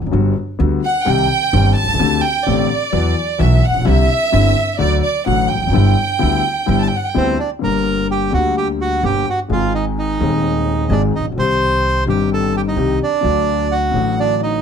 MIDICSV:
0, 0, Header, 1, 5, 480
1, 0, Start_track
1, 0, Key_signature, 1, "major"
1, 0, Tempo, 468384
1, 130, Time_signature, 4, 2, 24, 8
1, 7815, Key_signature, -2, "minor"
1, 14980, End_track
2, 0, Start_track
2, 0, Title_t, "Violin section"
2, 0, Program_c, 0, 48
2, 865, Note_on_c, 0, 78, 92
2, 1085, Note_off_c, 0, 78, 0
2, 1087, Note_on_c, 0, 79, 100
2, 1806, Note_on_c, 0, 81, 97
2, 1810, Note_off_c, 0, 79, 0
2, 2254, Note_off_c, 0, 81, 0
2, 2272, Note_on_c, 0, 79, 93
2, 2520, Note_off_c, 0, 79, 0
2, 2522, Note_on_c, 0, 74, 85
2, 3477, Note_off_c, 0, 74, 0
2, 3478, Note_on_c, 0, 76, 80
2, 3717, Note_off_c, 0, 76, 0
2, 3720, Note_on_c, 0, 78, 85
2, 3958, Note_off_c, 0, 78, 0
2, 3963, Note_on_c, 0, 76, 101
2, 4913, Note_on_c, 0, 74, 84
2, 4917, Note_off_c, 0, 76, 0
2, 5137, Note_off_c, 0, 74, 0
2, 5156, Note_on_c, 0, 74, 82
2, 5379, Note_off_c, 0, 74, 0
2, 5398, Note_on_c, 0, 78, 85
2, 5620, Note_off_c, 0, 78, 0
2, 5631, Note_on_c, 0, 79, 79
2, 6947, Note_off_c, 0, 79, 0
2, 6950, Note_on_c, 0, 81, 59
2, 7042, Note_on_c, 0, 79, 65
2, 7044, Note_off_c, 0, 81, 0
2, 7137, Note_off_c, 0, 79, 0
2, 7139, Note_on_c, 0, 78, 66
2, 7228, Note_on_c, 0, 79, 66
2, 7233, Note_off_c, 0, 78, 0
2, 7325, Note_off_c, 0, 79, 0
2, 14980, End_track
3, 0, Start_track
3, 0, Title_t, "Bandoneon"
3, 0, Program_c, 1, 23
3, 7341, Note_on_c, 1, 60, 57
3, 7349, Note_on_c, 1, 72, 77
3, 7562, Note_off_c, 1, 60, 0
3, 7567, Note_off_c, 1, 72, 0
3, 7570, Note_on_c, 1, 62, 52
3, 7584, Note_on_c, 1, 74, 58
3, 7680, Note_off_c, 1, 62, 0
3, 7690, Note_off_c, 1, 74, 0
3, 7821, Note_on_c, 1, 70, 64
3, 7832, Note_on_c, 1, 82, 85
3, 8268, Note_off_c, 1, 70, 0
3, 8274, Note_off_c, 1, 82, 0
3, 8311, Note_on_c, 1, 67, 50
3, 8315, Note_on_c, 1, 79, 65
3, 8531, Note_off_c, 1, 67, 0
3, 8532, Note_off_c, 1, 79, 0
3, 8538, Note_on_c, 1, 66, 54
3, 8551, Note_on_c, 1, 78, 68
3, 8763, Note_off_c, 1, 66, 0
3, 8770, Note_off_c, 1, 78, 0
3, 8785, Note_on_c, 1, 67, 58
3, 8790, Note_on_c, 1, 79, 72
3, 8892, Note_off_c, 1, 67, 0
3, 8896, Note_off_c, 1, 79, 0
3, 9030, Note_on_c, 1, 66, 57
3, 9033, Note_on_c, 1, 78, 79
3, 9248, Note_off_c, 1, 66, 0
3, 9269, Note_on_c, 1, 67, 66
3, 9274, Note_off_c, 1, 78, 0
3, 9280, Note_on_c, 1, 79, 75
3, 9488, Note_off_c, 1, 67, 0
3, 9517, Note_off_c, 1, 79, 0
3, 9526, Note_on_c, 1, 78, 71
3, 9530, Note_on_c, 1, 66, 53
3, 9628, Note_off_c, 1, 78, 0
3, 9631, Note_off_c, 1, 66, 0
3, 9756, Note_on_c, 1, 65, 72
3, 9761, Note_on_c, 1, 77, 83
3, 9972, Note_off_c, 1, 65, 0
3, 9974, Note_off_c, 1, 77, 0
3, 9985, Note_on_c, 1, 63, 56
3, 9990, Note_on_c, 1, 75, 70
3, 10091, Note_off_c, 1, 63, 0
3, 10096, Note_off_c, 1, 75, 0
3, 10229, Note_on_c, 1, 63, 63
3, 10238, Note_on_c, 1, 75, 76
3, 11139, Note_off_c, 1, 63, 0
3, 11183, Note_on_c, 1, 62, 61
3, 11192, Note_on_c, 1, 74, 79
3, 11213, Note_off_c, 1, 75, 0
3, 11289, Note_off_c, 1, 62, 0
3, 11296, Note_off_c, 1, 74, 0
3, 11430, Note_on_c, 1, 63, 54
3, 11435, Note_on_c, 1, 75, 70
3, 11534, Note_off_c, 1, 63, 0
3, 11538, Note_off_c, 1, 75, 0
3, 11671, Note_on_c, 1, 72, 77
3, 11674, Note_on_c, 1, 84, 101
3, 12336, Note_off_c, 1, 72, 0
3, 12337, Note_off_c, 1, 84, 0
3, 12388, Note_on_c, 1, 67, 55
3, 12393, Note_on_c, 1, 79, 76
3, 12600, Note_off_c, 1, 67, 0
3, 12603, Note_off_c, 1, 79, 0
3, 12640, Note_on_c, 1, 69, 63
3, 12643, Note_on_c, 1, 81, 88
3, 12845, Note_off_c, 1, 69, 0
3, 12869, Note_off_c, 1, 81, 0
3, 12879, Note_on_c, 1, 67, 59
3, 12881, Note_on_c, 1, 79, 80
3, 12925, Note_off_c, 1, 67, 0
3, 12927, Note_off_c, 1, 79, 0
3, 12987, Note_on_c, 1, 63, 58
3, 12995, Note_on_c, 1, 75, 74
3, 13310, Note_off_c, 1, 63, 0
3, 13314, Note_off_c, 1, 75, 0
3, 13354, Note_on_c, 1, 74, 74
3, 13356, Note_on_c, 1, 62, 58
3, 14018, Note_off_c, 1, 62, 0
3, 14057, Note_on_c, 1, 78, 63
3, 14060, Note_on_c, 1, 66, 48
3, 14078, Note_off_c, 1, 74, 0
3, 14499, Note_off_c, 1, 66, 0
3, 14546, Note_off_c, 1, 78, 0
3, 14550, Note_on_c, 1, 62, 59
3, 14550, Note_on_c, 1, 74, 72
3, 14765, Note_off_c, 1, 62, 0
3, 14765, Note_off_c, 1, 74, 0
3, 14786, Note_on_c, 1, 75, 70
3, 14791, Note_on_c, 1, 63, 53
3, 14980, Note_off_c, 1, 63, 0
3, 14980, Note_off_c, 1, 75, 0
3, 14980, End_track
4, 0, Start_track
4, 0, Title_t, "Grand piano"
4, 0, Program_c, 2, 0
4, 9, Note_on_c, 2, 41, 45
4, 68, Note_on_c, 2, 42, 57
4, 69, Note_off_c, 2, 41, 0
4, 117, Note_on_c, 2, 50, 64
4, 120, Note_on_c, 2, 55, 61
4, 122, Note_on_c, 2, 66, 75
4, 124, Note_on_c, 2, 43, 69
4, 124, Note_on_c, 2, 59, 54
4, 125, Note_on_c, 2, 31, 79
4, 129, Note_off_c, 2, 42, 0
4, 327, Note_off_c, 2, 50, 0
4, 328, Note_off_c, 2, 55, 0
4, 329, Note_off_c, 2, 66, 0
4, 330, Note_off_c, 2, 43, 0
4, 330, Note_off_c, 2, 59, 0
4, 331, Note_off_c, 2, 31, 0
4, 603, Note_on_c, 2, 50, 71
4, 605, Note_on_c, 2, 38, 80
4, 605, Note_on_c, 2, 59, 61
4, 606, Note_on_c, 2, 55, 61
4, 613, Note_on_c, 2, 66, 69
4, 813, Note_off_c, 2, 38, 0
4, 813, Note_off_c, 2, 50, 0
4, 813, Note_off_c, 2, 59, 0
4, 814, Note_off_c, 2, 55, 0
4, 818, Note_off_c, 2, 66, 0
4, 1076, Note_on_c, 2, 51, 70
4, 1079, Note_on_c, 2, 55, 63
4, 1083, Note_on_c, 2, 48, 84
4, 1083, Note_on_c, 2, 60, 60
4, 1083, Note_on_c, 2, 67, 77
4, 1084, Note_on_c, 2, 36, 86
4, 1288, Note_off_c, 2, 51, 0
4, 1289, Note_off_c, 2, 55, 0
4, 1291, Note_off_c, 2, 36, 0
4, 1291, Note_off_c, 2, 48, 0
4, 1291, Note_off_c, 2, 60, 0
4, 1291, Note_off_c, 2, 67, 0
4, 1567, Note_on_c, 2, 55, 66
4, 1568, Note_on_c, 2, 31, 84
4, 1568, Note_on_c, 2, 51, 72
4, 1570, Note_on_c, 2, 43, 84
4, 1570, Note_on_c, 2, 60, 67
4, 1571, Note_on_c, 2, 67, 76
4, 1772, Note_off_c, 2, 55, 0
4, 1773, Note_off_c, 2, 31, 0
4, 1773, Note_off_c, 2, 51, 0
4, 1774, Note_off_c, 2, 43, 0
4, 1774, Note_off_c, 2, 60, 0
4, 1774, Note_off_c, 2, 67, 0
4, 1864, Note_on_c, 2, 35, 49
4, 1929, Note_off_c, 2, 35, 0
4, 1930, Note_on_c, 2, 36, 55
4, 1992, Note_off_c, 2, 36, 0
4, 1992, Note_on_c, 2, 37, 66
4, 2046, Note_on_c, 2, 50, 84
4, 2048, Note_on_c, 2, 38, 78
4, 2050, Note_on_c, 2, 57, 68
4, 2053, Note_off_c, 2, 37, 0
4, 2055, Note_on_c, 2, 60, 65
4, 2059, Note_on_c, 2, 67, 76
4, 2252, Note_off_c, 2, 38, 0
4, 2253, Note_off_c, 2, 57, 0
4, 2255, Note_off_c, 2, 50, 0
4, 2255, Note_off_c, 2, 60, 0
4, 2257, Note_off_c, 2, 67, 0
4, 2529, Note_on_c, 2, 45, 86
4, 2530, Note_on_c, 2, 50, 70
4, 2532, Note_on_c, 2, 60, 70
4, 2533, Note_on_c, 2, 57, 64
4, 2535, Note_on_c, 2, 67, 81
4, 2536, Note_on_c, 2, 33, 77
4, 2729, Note_off_c, 2, 45, 0
4, 2730, Note_off_c, 2, 50, 0
4, 2731, Note_off_c, 2, 60, 0
4, 2732, Note_off_c, 2, 57, 0
4, 2732, Note_off_c, 2, 67, 0
4, 2733, Note_off_c, 2, 33, 0
4, 2997, Note_on_c, 2, 52, 89
4, 2998, Note_on_c, 2, 54, 65
4, 3000, Note_on_c, 2, 40, 79
4, 3002, Note_on_c, 2, 59, 65
4, 3004, Note_on_c, 2, 66, 78
4, 3201, Note_off_c, 2, 54, 0
4, 3202, Note_off_c, 2, 40, 0
4, 3203, Note_off_c, 2, 59, 0
4, 3204, Note_off_c, 2, 52, 0
4, 3204, Note_off_c, 2, 66, 0
4, 3466, Note_on_c, 2, 52, 71
4, 3473, Note_on_c, 2, 35, 85
4, 3473, Note_on_c, 2, 54, 65
4, 3475, Note_on_c, 2, 59, 65
4, 3476, Note_on_c, 2, 47, 86
4, 3477, Note_on_c, 2, 66, 83
4, 3674, Note_off_c, 2, 52, 0
4, 3677, Note_off_c, 2, 35, 0
4, 3677, Note_off_c, 2, 54, 0
4, 3678, Note_off_c, 2, 47, 0
4, 3678, Note_off_c, 2, 59, 0
4, 3679, Note_off_c, 2, 66, 0
4, 3786, Note_on_c, 2, 33, 51
4, 3835, Note_on_c, 2, 34, 60
4, 3842, Note_off_c, 2, 33, 0
4, 3893, Note_on_c, 2, 35, 58
4, 3896, Note_off_c, 2, 34, 0
4, 3946, Note_on_c, 2, 50, 72
4, 3947, Note_on_c, 2, 55, 69
4, 3948, Note_on_c, 2, 36, 93
4, 3948, Note_on_c, 2, 48, 85
4, 3949, Note_on_c, 2, 64, 83
4, 3950, Note_on_c, 2, 60, 67
4, 3955, Note_off_c, 2, 35, 0
4, 4151, Note_off_c, 2, 50, 0
4, 4152, Note_off_c, 2, 36, 0
4, 4152, Note_off_c, 2, 55, 0
4, 4153, Note_off_c, 2, 48, 0
4, 4153, Note_off_c, 2, 64, 0
4, 4154, Note_off_c, 2, 60, 0
4, 4430, Note_on_c, 2, 50, 73
4, 4431, Note_on_c, 2, 60, 59
4, 4432, Note_on_c, 2, 31, 83
4, 4432, Note_on_c, 2, 55, 63
4, 4434, Note_on_c, 2, 43, 85
4, 4435, Note_on_c, 2, 64, 85
4, 4634, Note_off_c, 2, 50, 0
4, 4634, Note_off_c, 2, 55, 0
4, 4634, Note_off_c, 2, 60, 0
4, 4635, Note_off_c, 2, 31, 0
4, 4636, Note_off_c, 2, 43, 0
4, 4636, Note_off_c, 2, 64, 0
4, 4904, Note_on_c, 2, 50, 82
4, 4906, Note_on_c, 2, 57, 72
4, 4908, Note_on_c, 2, 38, 90
4, 4909, Note_on_c, 2, 54, 67
4, 4911, Note_on_c, 2, 66, 78
4, 5111, Note_off_c, 2, 50, 0
4, 5112, Note_off_c, 2, 57, 0
4, 5113, Note_off_c, 2, 38, 0
4, 5114, Note_off_c, 2, 54, 0
4, 5115, Note_off_c, 2, 66, 0
4, 5392, Note_on_c, 2, 45, 76
4, 5392, Note_on_c, 2, 50, 71
4, 5394, Note_on_c, 2, 57, 61
4, 5395, Note_on_c, 2, 54, 68
4, 5398, Note_on_c, 2, 33, 83
4, 5400, Note_on_c, 2, 66, 72
4, 5595, Note_off_c, 2, 45, 0
4, 5595, Note_off_c, 2, 50, 0
4, 5596, Note_off_c, 2, 57, 0
4, 5597, Note_off_c, 2, 54, 0
4, 5598, Note_off_c, 2, 33, 0
4, 5599, Note_off_c, 2, 66, 0
4, 5688, Note_on_c, 2, 40, 51
4, 5751, Note_off_c, 2, 40, 0
4, 5754, Note_on_c, 2, 41, 50
4, 5812, Note_on_c, 2, 42, 62
4, 5815, Note_off_c, 2, 41, 0
4, 5858, Note_on_c, 2, 50, 62
4, 5864, Note_on_c, 2, 31, 86
4, 5864, Note_on_c, 2, 55, 70
4, 5867, Note_on_c, 2, 59, 63
4, 5869, Note_on_c, 2, 43, 81
4, 5872, Note_on_c, 2, 64, 77
4, 5873, Note_off_c, 2, 42, 0
4, 6068, Note_off_c, 2, 50, 0
4, 6071, Note_off_c, 2, 31, 0
4, 6071, Note_off_c, 2, 55, 0
4, 6073, Note_off_c, 2, 59, 0
4, 6074, Note_off_c, 2, 43, 0
4, 6075, Note_off_c, 2, 64, 0
4, 6346, Note_on_c, 2, 50, 87
4, 6349, Note_on_c, 2, 38, 82
4, 6350, Note_on_c, 2, 55, 62
4, 6354, Note_on_c, 2, 59, 60
4, 6356, Note_on_c, 2, 64, 82
4, 6555, Note_off_c, 2, 38, 0
4, 6556, Note_off_c, 2, 50, 0
4, 6556, Note_off_c, 2, 55, 0
4, 6558, Note_off_c, 2, 59, 0
4, 6559, Note_off_c, 2, 64, 0
4, 6828, Note_on_c, 2, 50, 68
4, 6829, Note_on_c, 2, 43, 87
4, 6836, Note_on_c, 2, 31, 78
4, 6836, Note_on_c, 2, 55, 62
4, 6837, Note_on_c, 2, 64, 75
4, 6839, Note_on_c, 2, 59, 67
4, 7039, Note_off_c, 2, 43, 0
4, 7039, Note_off_c, 2, 50, 0
4, 7043, Note_off_c, 2, 31, 0
4, 7043, Note_off_c, 2, 55, 0
4, 7043, Note_off_c, 2, 64, 0
4, 7044, Note_off_c, 2, 59, 0
4, 7323, Note_on_c, 2, 50, 80
4, 7323, Note_on_c, 2, 55, 61
4, 7324, Note_on_c, 2, 38, 71
4, 7325, Note_on_c, 2, 59, 66
4, 7327, Note_on_c, 2, 64, 77
4, 7531, Note_off_c, 2, 38, 0
4, 7531, Note_off_c, 2, 55, 0
4, 7532, Note_off_c, 2, 59, 0
4, 7533, Note_off_c, 2, 50, 0
4, 7533, Note_off_c, 2, 64, 0
4, 7781, Note_on_c, 2, 50, 67
4, 7798, Note_on_c, 2, 55, 50
4, 7802, Note_on_c, 2, 31, 75
4, 7802, Note_on_c, 2, 43, 70
4, 7806, Note_on_c, 2, 58, 62
4, 7822, Note_on_c, 2, 67, 64
4, 8487, Note_off_c, 2, 50, 0
4, 8496, Note_off_c, 2, 55, 0
4, 8498, Note_off_c, 2, 31, 0
4, 8498, Note_off_c, 2, 43, 0
4, 8500, Note_off_c, 2, 58, 0
4, 8508, Note_off_c, 2, 67, 0
4, 8514, Note_on_c, 2, 50, 64
4, 8530, Note_off_c, 2, 50, 0
4, 8535, Note_on_c, 2, 55, 63
4, 8536, Note_on_c, 2, 38, 74
4, 8538, Note_on_c, 2, 50, 72
4, 8550, Note_on_c, 2, 58, 51
4, 8557, Note_on_c, 2, 67, 69
4, 9222, Note_off_c, 2, 55, 0
4, 9223, Note_off_c, 2, 38, 0
4, 9224, Note_off_c, 2, 50, 0
4, 9230, Note_off_c, 2, 58, 0
4, 9233, Note_off_c, 2, 67, 0
4, 9261, Note_on_c, 2, 58, 58
4, 9263, Note_on_c, 2, 31, 81
4, 9264, Note_on_c, 2, 50, 61
4, 9265, Note_on_c, 2, 43, 74
4, 9265, Note_on_c, 2, 55, 53
4, 9266, Note_on_c, 2, 67, 69
4, 9462, Note_off_c, 2, 58, 0
4, 9463, Note_off_c, 2, 31, 0
4, 9463, Note_off_c, 2, 50, 0
4, 9464, Note_off_c, 2, 43, 0
4, 9464, Note_off_c, 2, 55, 0
4, 9464, Note_off_c, 2, 67, 0
4, 9720, Note_on_c, 2, 51, 62
4, 9730, Note_on_c, 2, 56, 60
4, 9737, Note_on_c, 2, 32, 80
4, 9740, Note_on_c, 2, 44, 80
4, 9746, Note_on_c, 2, 60, 59
4, 9759, Note_on_c, 2, 68, 74
4, 10412, Note_off_c, 2, 51, 0
4, 10418, Note_off_c, 2, 56, 0
4, 10421, Note_off_c, 2, 32, 0
4, 10423, Note_off_c, 2, 44, 0
4, 10426, Note_off_c, 2, 60, 0
4, 10432, Note_off_c, 2, 68, 0
4, 10440, Note_on_c, 2, 51, 64
4, 10454, Note_on_c, 2, 56, 64
4, 10463, Note_on_c, 2, 27, 84
4, 10464, Note_on_c, 2, 39, 82
4, 10468, Note_on_c, 2, 60, 59
4, 10482, Note_on_c, 2, 68, 72
4, 11130, Note_off_c, 2, 51, 0
4, 11137, Note_off_c, 2, 56, 0
4, 11141, Note_off_c, 2, 27, 0
4, 11142, Note_off_c, 2, 39, 0
4, 11144, Note_off_c, 2, 60, 0
4, 11151, Note_off_c, 2, 68, 0
4, 11175, Note_on_c, 2, 51, 68
4, 11176, Note_on_c, 2, 44, 75
4, 11178, Note_on_c, 2, 60, 66
4, 11181, Note_on_c, 2, 56, 61
4, 11182, Note_on_c, 2, 32, 78
4, 11185, Note_on_c, 2, 68, 70
4, 11376, Note_off_c, 2, 51, 0
4, 11377, Note_off_c, 2, 44, 0
4, 11377, Note_off_c, 2, 60, 0
4, 11379, Note_off_c, 2, 56, 0
4, 11380, Note_off_c, 2, 32, 0
4, 11381, Note_off_c, 2, 68, 0
4, 11472, Note_on_c, 2, 33, 46
4, 11533, Note_off_c, 2, 33, 0
4, 11535, Note_on_c, 2, 34, 52
4, 11593, Note_on_c, 2, 35, 59
4, 11594, Note_off_c, 2, 34, 0
4, 11645, Note_on_c, 2, 51, 60
4, 11653, Note_off_c, 2, 35, 0
4, 11658, Note_on_c, 2, 55, 60
4, 11668, Note_on_c, 2, 48, 80
4, 11669, Note_on_c, 2, 36, 71
4, 11676, Note_on_c, 2, 60, 63
4, 11689, Note_on_c, 2, 67, 79
4, 12328, Note_off_c, 2, 51, 0
4, 12334, Note_off_c, 2, 55, 0
4, 12339, Note_off_c, 2, 48, 0
4, 12340, Note_off_c, 2, 36, 0
4, 12344, Note_off_c, 2, 60, 0
4, 12350, Note_off_c, 2, 67, 0
4, 12359, Note_on_c, 2, 51, 67
4, 12372, Note_on_c, 2, 55, 60
4, 12376, Note_on_c, 2, 31, 78
4, 12381, Note_on_c, 2, 43, 78
4, 12383, Note_on_c, 2, 60, 63
4, 12401, Note_on_c, 2, 67, 70
4, 13042, Note_off_c, 2, 51, 0
4, 13049, Note_off_c, 2, 55, 0
4, 13051, Note_off_c, 2, 31, 0
4, 13053, Note_off_c, 2, 43, 0
4, 13054, Note_off_c, 2, 60, 0
4, 13064, Note_off_c, 2, 67, 0
4, 13081, Note_on_c, 2, 51, 64
4, 13084, Note_on_c, 2, 55, 57
4, 13087, Note_on_c, 2, 36, 69
4, 13088, Note_on_c, 2, 48, 77
4, 13092, Note_on_c, 2, 60, 61
4, 13096, Note_on_c, 2, 67, 69
4, 13283, Note_off_c, 2, 51, 0
4, 13285, Note_off_c, 2, 55, 0
4, 13286, Note_off_c, 2, 36, 0
4, 13287, Note_off_c, 2, 48, 0
4, 13289, Note_off_c, 2, 60, 0
4, 13291, Note_off_c, 2, 67, 0
4, 13538, Note_on_c, 2, 50, 68
4, 13548, Note_on_c, 2, 54, 57
4, 13556, Note_on_c, 2, 38, 72
4, 13566, Note_on_c, 2, 57, 59
4, 13579, Note_on_c, 2, 66, 72
4, 14238, Note_off_c, 2, 54, 0
4, 14241, Note_off_c, 2, 50, 0
4, 14242, Note_off_c, 2, 38, 0
4, 14247, Note_off_c, 2, 57, 0
4, 14253, Note_off_c, 2, 66, 0
4, 14263, Note_on_c, 2, 50, 68
4, 14280, Note_on_c, 2, 54, 53
4, 14286, Note_on_c, 2, 33, 80
4, 14286, Note_on_c, 2, 45, 70
4, 14293, Note_on_c, 2, 57, 53
4, 14306, Note_on_c, 2, 66, 74
4, 14966, Note_off_c, 2, 50, 0
4, 14974, Note_off_c, 2, 54, 0
4, 14977, Note_off_c, 2, 33, 0
4, 14978, Note_off_c, 2, 45, 0
4, 14980, Note_off_c, 2, 57, 0
4, 14980, Note_off_c, 2, 66, 0
4, 14980, End_track
5, 0, Start_track
5, 0, Title_t, "Upright bass"
5, 0, Program_c, 3, 32
5, 18, Note_on_c, 3, 29, 52
5, 59, Note_off_c, 3, 29, 0
5, 65, Note_on_c, 3, 30, 62
5, 128, Note_off_c, 3, 30, 0
5, 134, Note_on_c, 3, 31, 75
5, 335, Note_off_c, 3, 31, 0
5, 612, Note_on_c, 3, 38, 89
5, 817, Note_off_c, 3, 38, 0
5, 1099, Note_on_c, 3, 36, 88
5, 1299, Note_off_c, 3, 36, 0
5, 1569, Note_on_c, 3, 31, 91
5, 1773, Note_off_c, 3, 31, 0
5, 1874, Note_on_c, 3, 35, 51
5, 1915, Note_off_c, 3, 35, 0
5, 1921, Note_on_c, 3, 36, 58
5, 1981, Note_off_c, 3, 36, 0
5, 1987, Note_on_c, 3, 37, 68
5, 2037, Note_off_c, 3, 37, 0
5, 2043, Note_on_c, 3, 38, 89
5, 2249, Note_off_c, 3, 38, 0
5, 2529, Note_on_c, 3, 33, 89
5, 2729, Note_off_c, 3, 33, 0
5, 3000, Note_on_c, 3, 40, 84
5, 3202, Note_off_c, 3, 40, 0
5, 3485, Note_on_c, 3, 35, 94
5, 3683, Note_off_c, 3, 35, 0
5, 3789, Note_on_c, 3, 33, 52
5, 3844, Note_off_c, 3, 33, 0
5, 3855, Note_on_c, 3, 34, 53
5, 3906, Note_off_c, 3, 34, 0
5, 3911, Note_on_c, 3, 35, 67
5, 3961, Note_off_c, 3, 35, 0
5, 3968, Note_on_c, 3, 36, 93
5, 4162, Note_off_c, 3, 36, 0
5, 4442, Note_on_c, 3, 31, 94
5, 4639, Note_off_c, 3, 31, 0
5, 4919, Note_on_c, 3, 38, 86
5, 5119, Note_off_c, 3, 38, 0
5, 5401, Note_on_c, 3, 33, 89
5, 5600, Note_off_c, 3, 33, 0
5, 5712, Note_on_c, 3, 28, 46
5, 5763, Note_off_c, 3, 28, 0
5, 5768, Note_on_c, 3, 29, 56
5, 5821, Note_off_c, 3, 29, 0
5, 5834, Note_on_c, 3, 30, 66
5, 5884, Note_off_c, 3, 30, 0
5, 5895, Note_on_c, 3, 31, 84
5, 6087, Note_off_c, 3, 31, 0
5, 6381, Note_on_c, 3, 38, 81
5, 6572, Note_off_c, 3, 38, 0
5, 6851, Note_on_c, 3, 31, 88
5, 7050, Note_off_c, 3, 31, 0
5, 7337, Note_on_c, 3, 38, 86
5, 7538, Note_off_c, 3, 38, 0
5, 7827, Note_on_c, 3, 31, 73
5, 8511, Note_off_c, 3, 31, 0
5, 8540, Note_on_c, 3, 38, 82
5, 9225, Note_off_c, 3, 38, 0
5, 9257, Note_on_c, 3, 31, 85
5, 9460, Note_off_c, 3, 31, 0
5, 9731, Note_on_c, 3, 32, 73
5, 10418, Note_off_c, 3, 32, 0
5, 10456, Note_on_c, 3, 39, 78
5, 11138, Note_off_c, 3, 39, 0
5, 11166, Note_on_c, 3, 32, 90
5, 11372, Note_off_c, 3, 32, 0
5, 11471, Note_on_c, 3, 33, 46
5, 11524, Note_off_c, 3, 33, 0
5, 11530, Note_on_c, 3, 34, 52
5, 11592, Note_off_c, 3, 34, 0
5, 11601, Note_on_c, 3, 35, 60
5, 11652, Note_off_c, 3, 35, 0
5, 11658, Note_on_c, 3, 36, 79
5, 12335, Note_off_c, 3, 36, 0
5, 12373, Note_on_c, 3, 31, 73
5, 13049, Note_off_c, 3, 31, 0
5, 13081, Note_on_c, 3, 36, 83
5, 13283, Note_off_c, 3, 36, 0
5, 13570, Note_on_c, 3, 38, 80
5, 14249, Note_off_c, 3, 38, 0
5, 14277, Note_on_c, 3, 33, 69
5, 14973, Note_off_c, 3, 33, 0
5, 14980, End_track
0, 0, End_of_file